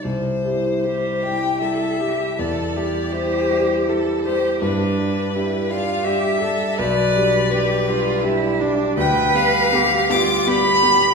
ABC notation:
X:1
M:3/4
L:1/8
Q:1/4=81
K:C
V:1 name="Violin"
c3 g e2 | d2 c2 z c | B3 f e2 | d2 B2 z2 |
[K:Gphr] g f2 d' =b2 |]
V:2 name="Cello"
z2 G2 A G | A G3 A G | D2 E F G A | B2 G F E D |
[K:Gphr] =B2 G F G2 |]
V:3 name="Grand piano"
C,, [G,EG] [G,EG] [G,EG] [G,EG] [G,EG] | E,, [G,EG] [G,EG] [G,EG] [G,EG] [G,EG] | G,, [G,DG] [G,DG] [G,DG] [G,DG] [G,DG] | B,,, [G,DG] [G,DG] [G,DG] [G,DG] [G,DG] |
[K:Gphr] D,, [G,=B,G] [G,B,G] [G,B,G] [G,B,G] [G,B,G] |]